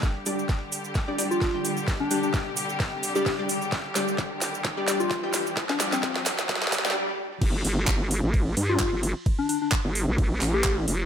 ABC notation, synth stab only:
X:1
M:4/4
L:1/16
Q:"Swing 16ths" 1/4=130
K:Cdor
V:1 name="Synth stab"
z2 [G,DGd] z6 [G,DGd] [G,DGd] z2 [G,DGg] z2 | z2 [G,DGd] z8 [G,DGd] z [G,DGd] z2 | z2 [G,DGd] z6 [G,DGd] [G,DGd] z2 [G,DGg] z2 | z2 [G,DGd] z8 [G,DGd] z4 |
z16 | z16 |]